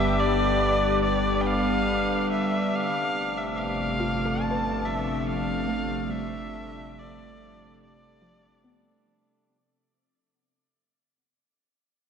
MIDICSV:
0, 0, Header, 1, 7, 480
1, 0, Start_track
1, 0, Tempo, 845070
1, 1552, Time_signature, 4, 2, 24, 8
1, 6872, End_track
2, 0, Start_track
2, 0, Title_t, "Synth texture"
2, 0, Program_c, 0, 99
2, 0, Note_on_c, 0, 86, 86
2, 5400, Note_off_c, 0, 86, 0
2, 6872, End_track
3, 0, Start_track
3, 0, Title_t, "Electric violin"
3, 0, Program_c, 1, 40
3, 0, Note_on_c, 1, 76, 98
3, 111, Note_on_c, 1, 74, 88
3, 120, Note_off_c, 1, 76, 0
3, 579, Note_off_c, 1, 74, 0
3, 582, Note_on_c, 1, 74, 85
3, 799, Note_on_c, 1, 79, 71
3, 807, Note_off_c, 1, 74, 0
3, 832, Note_on_c, 1, 77, 102
3, 840, Note_off_c, 1, 79, 0
3, 1312, Note_off_c, 1, 77, 0
3, 1314, Note_on_c, 1, 76, 91
3, 1560, Note_on_c, 1, 77, 105
3, 1569, Note_off_c, 1, 76, 0
3, 1917, Note_on_c, 1, 76, 83
3, 1925, Note_off_c, 1, 77, 0
3, 2032, Note_on_c, 1, 77, 99
3, 2040, Note_off_c, 1, 76, 0
3, 2514, Note_on_c, 1, 81, 110
3, 2523, Note_off_c, 1, 77, 0
3, 2755, Note_on_c, 1, 76, 95
3, 2764, Note_off_c, 1, 81, 0
3, 2991, Note_on_c, 1, 77, 106
3, 3000, Note_off_c, 1, 76, 0
3, 3468, Note_on_c, 1, 76, 104
3, 3477, Note_off_c, 1, 77, 0
3, 3967, Note_on_c, 1, 74, 92
3, 3976, Note_off_c, 1, 76, 0
3, 4440, Note_off_c, 1, 74, 0
3, 4444, Note_on_c, 1, 74, 86
3, 5136, Note_off_c, 1, 74, 0
3, 6872, End_track
4, 0, Start_track
4, 0, Title_t, "Synth pluck"
4, 0, Program_c, 2, 84
4, 2270, Note_on_c, 2, 65, 69
4, 2417, Note_on_c, 2, 69, 52
4, 2561, Note_on_c, 2, 71, 53
4, 3146, Note_off_c, 2, 65, 0
4, 3225, Note_on_c, 2, 57, 75
4, 3279, Note_off_c, 2, 69, 0
4, 3411, Note_off_c, 2, 71, 0
4, 3461, Note_on_c, 2, 55, 69
4, 4103, Note_off_c, 2, 57, 0
4, 4341, Note_off_c, 2, 55, 0
4, 4668, Note_on_c, 2, 53, 76
4, 4909, Note_on_c, 2, 59, 75
4, 5545, Note_off_c, 2, 53, 0
4, 5608, Note_off_c, 2, 59, 0
4, 6872, End_track
5, 0, Start_track
5, 0, Title_t, "Harmonium"
5, 0, Program_c, 3, 20
5, 0, Note_on_c, 3, 55, 71
5, 0, Note_on_c, 3, 62, 75
5, 5436, Note_off_c, 3, 62, 0
5, 5438, Note_off_c, 3, 55, 0
5, 6872, End_track
6, 0, Start_track
6, 0, Title_t, "Ambient pad"
6, 0, Program_c, 4, 92
6, 0, Note_on_c, 4, 50, 71
6, 0, Note_on_c, 4, 55, 78
6, 0, Note_on_c, 4, 59, 81
6, 0, Note_on_c, 4, 67, 75
6, 0, Note_on_c, 4, 71, 66
6, 1550, Note_on_c, 4, 48, 79
6, 1553, Note_off_c, 4, 50, 0
6, 1562, Note_off_c, 4, 55, 0
6, 1692, Note_on_c, 4, 53, 76
6, 1765, Note_on_c, 4, 57, 92
6, 2073, Note_on_c, 4, 69, 80
6, 2315, Note_on_c, 4, 62, 76
6, 2894, Note_off_c, 4, 71, 0
6, 3082, Note_off_c, 4, 67, 0
6, 3088, Note_off_c, 4, 59, 0
6, 5391, Note_off_c, 4, 48, 0
6, 5394, Note_off_c, 4, 53, 0
6, 5396, Note_off_c, 4, 62, 0
6, 5397, Note_off_c, 4, 57, 0
6, 5397, Note_off_c, 4, 69, 0
6, 6872, End_track
7, 0, Start_track
7, 0, Title_t, "Synth drone"
7, 0, Program_c, 5, 95
7, 0, Note_on_c, 5, 31, 88
7, 1527, Note_off_c, 5, 31, 0
7, 1550, Note_on_c, 5, 31, 85
7, 5367, Note_off_c, 5, 31, 0
7, 6872, End_track
0, 0, End_of_file